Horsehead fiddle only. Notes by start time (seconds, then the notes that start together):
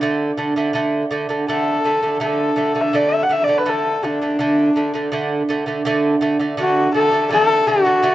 1.49 A4
2.23 A4
2.81 E5
2.96 D5
3.09 E5
3.23 F#5
3.32 E5
3.44 D5
3.58 B4
3.69 A4
4.06 D4
6.60 F#4
6.94 A4
7.32 A4
7.67 F#4